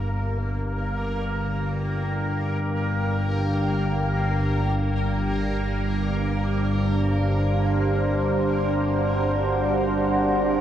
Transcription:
Already playing: synth drone G1 G2, ambient pad G3 D4 A#4, synth texture A#3 A#4
0.17 ambient pad G5
5.56 ambient pad C5
7.76 ambient pad F#5

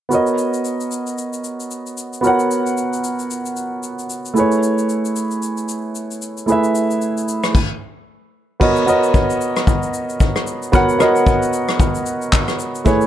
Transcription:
0.09 grand piano B3 F#4 A#4, shaker
0.13 grand piano C#5 D#5
0.27 shaker
0.38 shaker
0.54 shaker
0.65 shaker
0.80 shaker
0.91 shaker
1.07 shaker
1.18 shaker
1.33 shaker
1.44 shaker
1.60 shaker
1.71 shaker
1.86 shaker
1.98 shaker
2.13 shaker
2.21 grand piano B3 F#4 A#4, shaker
2.25 grand piano C#5 F#5
2.39 shaker
2.51 shaker
2.66 shaker
2.77 shaker
2.93 shaker
3.04 shaker
3.19 shaker
3.31 shaker
3.46 shaker
3.57 shaker
3.83 shaker
3.99 shaker
4.10 shaker
4.25 shaker
4.34 grand piano A3 E4 G#4, shaker
4.38 grand piano B4 C#5
4.52 shaker
4.63 shaker
4.78 shaker
4.89 shaker
5.05 shaker
5.16 shaker
5.31 shaker
5.42 shaker
5.57 shaker
5.69 shaker
5.95 shaker
6.11 shaker
6.22 shaker
6.37 shaker
6.46 grand piano A3 E4 G#4, shaker
6.50 grand piano B4 E5
6.64 shaker
6.75 shaker
6.91 shaker
7.02 shaker
7.17 shaker
7.28 shaker
7.43 cross-stick, shaker
7.55 kick, crash
8.60 grand piano B3 F#4 A#4 C#5 D#5, kick, crash
8.76 shaker
8.86 grand piano B3 F#4 A#4 C#5 D#5, shaker
9.03 shaker
9.14 kick, shaker
9.30 shaker
9.41 shaker
9.56 cross-stick, shaker
9.67 kick, shaker
9.83 shaker
9.94 shaker
10.09 shaker
10.20 kick, shaker
10.36 cross-stick, shaker
10.47 shaker
10.63 shaker
10.72 grand piano B3 F#4 A#4 C#5 F#5, kick, shaker
10.89 shaker
10.99 grand piano B3 F#4 A#4 C#5 D#5, cross-stick, shaker
11.16 shaker
11.27 kick, shaker
11.42 shaker
11.53 shaker
11.68 cross-stick, shaker
11.80 kick, shaker
11.95 shaker
12.06 shaker
12.22 shaker
12.33 kick, clap, shaker
12.48 cross-stick, shaker
12.59 shaker
12.75 shaker
12.85 grand piano A3 E4 G#4 B4 C#5, kick, shaker
13.01 shaker

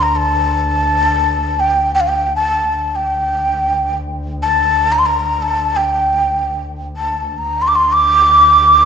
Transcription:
Already playing: double bass D2
0.02 ney A#5
0.16 ney A5
1.60 ney G5
1.94 ney G5
2.00 ney F5
2.08 ney G5
2.36 ney A5
2.72 double bass D2
2.95 ney G5
4.42 ney A5
4.92 ney A#5
4.99 ney C6
5.06 ney A#5
5.42 ney A5
5.76 ney G5
6.97 ney A5
7.38 ney A#5
7.45 double bass D2
7.62 ney C6
7.68 ney D6
7.75 ney C6
7.93 ney D6

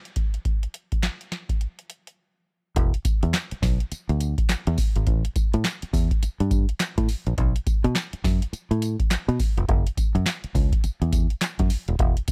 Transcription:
0.05 closed hi-hat
0.16 kick, closed hi-hat
0.34 closed hi-hat
0.45 kick, closed hi-hat
0.63 closed hi-hat
0.74 closed hi-hat
0.92 kick, closed hi-hat
1.03 snare, clap, closed hi-hat
1.21 closed hi-hat
1.32 snare, closed hi-hat
1.49 kick, closed hi-hat
1.61 closed hi-hat
1.79 closed hi-hat
1.90 closed hi-hat
2.07 closed hi-hat
2.76 fingered electric bass E1, kick, closed hi-hat
2.94 closed hi-hat
3.05 muted fingered electric bass stroke, kick, closed hi-hat, tambourine
3.23 fingered electric bass E2, closed hi-hat
3.34 snare, clap, closed hi-hat, tambourine
3.51 muted fingered electric bass stroke, closed hi-hat
3.62 fingered electric bass B1, kick, snare, open hi-hat, tambourine
3.80 closed hi-hat
3.92 muted fingered electric bass stroke, closed hi-hat, tambourine
4.09 fingered electric bass D2, closed hi-hat
4.21 closed hi-hat, tambourine
4.38 kick, closed hi-hat
4.49 snare, clap, closed hi-hat, tambourine
4.67 fingered electric bass E2, closed hi-hat
4.78 kick, open hi-hat, tambourine
4.96 fingered electric bass G#1, closed hi-hat
5.07 fingered electric bass A1, kick, closed hi-hat
5.25 closed hi-hat
5.36 muted fingered electric bass stroke, kick, closed hi-hat, tambourine
5.54 fingered electric bass A2, closed hi-hat
5.64 snare, clap, closed hi-hat, tambourine
5.82 muted fingered electric bass stroke, closed hi-hat
5.93 fingered electric bass E2, kick, open hi-hat, tambourine
6.11 kick, closed hi-hat
6.23 muted fingered electric bass stroke, closed hi-hat, tambourine
6.40 fingered electric bass G2, closed hi-hat
6.51 kick, closed hi-hat, tambourine
6.69 closed hi-hat
6.80 snare, clap, closed hi-hat, tambourine
6.98 fingered electric bass A2, kick, closed hi-hat
7.09 open hi-hat, tambourine
7.27 fingered electric bass A#1, closed hi-hat
7.38 fingered electric bass B1, kick, closed hi-hat
7.56 closed hi-hat
7.67 muted fingered electric bass stroke, kick, closed hi-hat, tambourine
7.84 fingered electric bass B2, closed hi-hat
7.95 snare, clap, closed hi-hat, tambourine
8.13 muted fingered electric bass stroke, closed hi-hat
8.24 fingered electric bass F#2, kick, snare, open hi-hat, tambourine
8.42 closed hi-hat
8.53 muted fingered electric bass stroke, closed hi-hat, tambourine
8.71 fingered electric bass A2, closed hi-hat
8.82 closed hi-hat, tambourine
9.00 kick, closed hi-hat
9.11 snare, clap, closed hi-hat, tambourine
9.28 fingered electric bass B2, closed hi-hat
9.39 kick, open hi-hat, tambourine
9.57 fingered electric bass F1, closed hi-hat
9.68 fingered electric bass F#1, kick, closed hi-hat
9.87 closed hi-hat
9.97 muted fingered electric bass stroke, kick, closed hi-hat, tambourine
10.15 fingered electric bass F#2, closed hi-hat
10.26 snare, clap, closed hi-hat, tambourine
10.44 muted fingered electric bass stroke, closed hi-hat
10.55 fingered electric bass C#2, kick, open hi-hat, tambourine
10.72 kick, closed hi-hat
10.84 muted fingered electric bass stroke, closed hi-hat, tambourine
11.02 fingered electric bass E2, closed hi-hat
11.12 kick, closed hi-hat, tambourine
11.30 closed hi-hat
11.41 snare, clap, closed hi-hat, tambourine
11.59 fingered electric bass F#2, kick, closed hi-hat
11.70 open hi-hat, tambourine
11.88 fingered electric bass D#1, closed hi-hat
11.99 fingered electric bass E1, kick, closed hi-hat
12.17 closed hi-hat
12.28 muted fingered electric bass stroke, kick, closed hi-hat, tambourine

